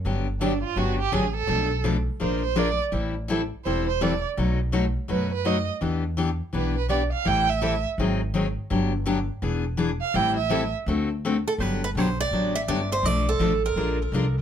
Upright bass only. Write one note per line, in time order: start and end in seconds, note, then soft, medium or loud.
0.05 0.62 G1 medium
0.76 1.07 G1 medium
1.12 1.43 A1 medium
1.49 2.06 B1 medium
2.21 2.79 A#1 medium
2.92 3.50 A1 medium
3.66 4.23 E1 medium
4.38 4.95 B1 medium
5.10 5.68 F#2 medium
5.82 6.39 E2 medium
6.53 7.11 B1 medium
7.26 7.84 A1 medium
7.98 8.56 G#1 medium
8.71 9.28 G1 medium
9.42 10.00 E1 medium
10.14 10.72 A1 medium
10.86 11.45 D2 medium
11.58 11.94 G1 medium
11.95 12.30 B1 medium
12.31 12.66 A1 medium
12.68 13.02 G1 medium
13.03 13.39 B1 medium
13.39 13.75 A1 medium
13.76 14.11 A#1 medium
14.12 14.42 C2 medium